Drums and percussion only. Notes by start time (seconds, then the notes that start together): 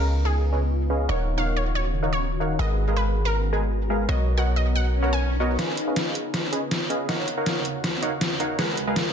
5.59 snare, closed hi-hat
5.77 closed hi-hat
5.96 snare, closed hi-hat
6.15 closed hi-hat
6.34 snare, closed hi-hat
6.53 closed hi-hat
6.71 snare, closed hi-hat
6.90 closed hi-hat
7.09 snare, closed hi-hat
7.28 closed hi-hat
7.46 snare, closed hi-hat
7.65 closed hi-hat
7.84 snare, closed hi-hat
8.03 closed hi-hat
8.21 snare, closed hi-hat
8.40 closed hi-hat
8.59 snare, closed hi-hat
8.77 closed hi-hat
8.96 snare, closed hi-hat